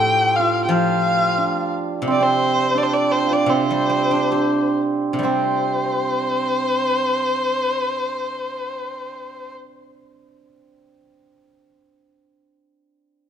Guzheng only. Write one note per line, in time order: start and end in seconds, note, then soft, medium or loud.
0.00 1.38 A2 soft
0.69 2.74 F3 medium
2.02 3.45 C3 medium
3.46 5.12 C3 soft
3.70 5.18 G3 soft
3.90 5.22 C4 soft
4.11 5.98 D4 soft
4.32 6.22 G4 soft
5.13 11.76 C3 soft
5.19 11.25 G3 soft
5.23 10.33 C4 soft